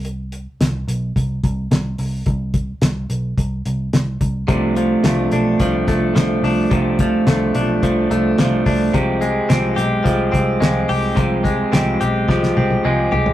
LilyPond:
<<
  \new Staff \with { instrumentName = "Clean electric guitar" } { \time 4/4 \key d \dorian \tempo 4 = 108 r1 | r1 | <c f a d'>8 <f a d'>8 <c f a d'>8 <f a d'>8 <c f a d'>8 <f a d'>8 <c f a d'>8 <f a d'>8 | <c f a d'>8 <f a d'>8 <c f a d'>8 <f a d'>8 <c f a d'>8 <f a d'>8 <c f a d'>8 <f a d'>8 |
<c f aes c' g'>8 <aes c' g'>8 <c f aes c' g'>8 <aes c' g'>8 <f aes c' g'>8 <aes c' g'>8 <c f aes c' g'>8 <aes c' g'>8 | <c f aes c' g'>8 <aes c' g'>8 <c f aes c' g'>8 <aes c' g'>8 <f aes c' g'>8 <aes c' g'>8 <c f aes c' g'>8 <aes c' g'>8 | }
  \new Staff \with { instrumentName = "Clean electric guitar" } { \clef bass \time 4/4 \key d \dorian r1 | r1 | c8 f8 a8 d'8 f8 a8 f8 d'8 | c8 f8 a8 d'8 f8 a8 f8 d'8 |
c8 aes8 c'8 g'8 f8 c'8 aes8 g'8 | c8 aes8 c'8 g'8 f8 c'8 aes8 g'8 | }
  \new Staff \with { instrumentName = "Picked electric bass" } { \clef bass \time 4/4 \key d \dorian c,4 c,8 b,,8 c,8 c,8 c,8 c,8 | c,4 c,8 b,,8 c,8 c,8 c,8 c,8 | c,4 c,8 b,,8 c,8 c,8 c,8 c,8 | c,4 c,8 b,,8 c,8 c,8 c,8 c,8 |
c,4 c,8 b,,8 c,8 c,8 c,8 c,8 | c,4 c,8 b,,8 c,8 c,8 c,8 c,8 | }
  \new DrumStaff \with { instrumentName = "Drums" } \drummode { \time 4/4 hh8 hh8 <hh sn>8 hh8 <hh bd>8 <hh bd>8 <hh sn>8 hho8 | <hh bd>8 <hh bd>8 <hh sn>8 hh8 <hh bd>8 hh8 <hh sn>8 <hh bd>8 | <hh bd>8 hh8 <hh sn>8 hh8 <hh bd>8 <hh bd sn>8 <hh sn>8 hho8 | <hh bd>8 <hh bd>8 <hh sn>8 hh8 <hh bd>8 hh8 <hh sn>8 <hho bd>8 |
<hh bd>8 hh8 <hh sn>8 hh8 <hh bd>8 <hh bd>8 <hh sn>8 hho8 | <hh bd>8 <hh bd>8 <hh sn>8 hh8 <bd sn>16 sn16 tommh16 tommh16 r8 tomfh16 tomfh16 | }
>>